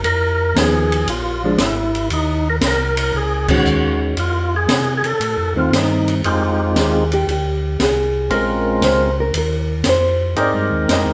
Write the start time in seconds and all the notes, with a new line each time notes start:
0.04 F2 A#4, ride
0.56 D#2 F3 B3 D#4 G#4, snare, hi-hat pedal, ride
0.92 ride
1.07 A#1 F4, ride
1.44 F3 G#3 D4
1.58 G#1 D4 E4, snare, hi-hat pedal, ride
1.95 ride
2.10 D#2 D#4, ride
2.50 A#4
2.61 C2, snare, hi-hat pedal, ride
2.66 A#4
2.97 ride
3.13 C#2 G#4
3.48 D#3 G#3 C#4 F#4, kick, crash
3.54 F#4
3.65 D#2, hi-hat pedal
4.17 F2 F4, ride
4.56 G#4
4.68 C3, snare, hi-hat pedal, ride
4.97 G#4
5.04 C3 A4, ride
5.20 A2, ride
5.37 F2
5.55 D#2 D#3 A3 C4 F4
5.71 G2, snare, hi-hat pedal, ride
5.76 D#4
6.08 ride
6.24 F2 G#3 C4 D#4 F4 G4, ride
6.74 D#2, snare, hi-hat pedal, ride
6.79 G#4
7.12 G4, ride
7.27 D2 G4, ride
7.79 C2 G#4, snare, hi-hat pedal, ride
8.30 A#1 G#3 C4 C#4 F4 A#4, ride
8.34 A#4
8.81 C#2 C5, snare, hi-hat pedal, ride
9.20 A#4
9.33 D#2, ride
9.38 A#4
9.84 F2, snare, hi-hat pedal, ride
9.89 C5
10.36 G#2 G#3 C4 D#4 G4 A#4, ride
10.41 D5
10.54 G2
10.71 D#2
10.88 F2, snare, hi-hat pedal, ride
10.93 D#5
11.06 D#2